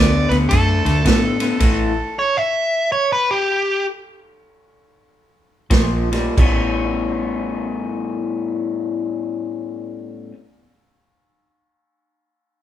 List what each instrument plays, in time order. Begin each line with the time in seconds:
Already playing: fingered electric bass D2, clean electric guitar D3 B3, overdriven electric guitar D5
0.29 fingered electric bass D2, clean electric guitar D3 B3, overdriven electric guitar B4, snare, ride
0.49 fingered electric bass F#2, clean electric guitar D3 A3, overdriven electric guitar A4, kick, snare, ride
0.85 fingered electric bass D2, clean electric guitar D3 A3, snare, ride
1.05 fingered electric bass A2, clean electric guitar D3 B3, kick, snare, ride
1.40 clean electric guitar D3 B3, snare, ride
1.59 fingered electric bass A1, clean electric guitar A2 E3, kick, snare, crash, ride
2.19 overdriven electric guitar C#5
2.37 overdriven electric guitar E5
2.92 overdriven electric guitar C#5
3.13 overdriven electric guitar B4
3.31 overdriven electric guitar G4
5.70 fingered electric bass A#1, clean electric guitar A#2 F3, kick, snare, ride
6.12 clean electric guitar A#2 G3, snare, ride
6.37 fingered electric bass A1, clean electric guitar A2 G3 B3, kick, crash
6.41 clean electric guitar C#4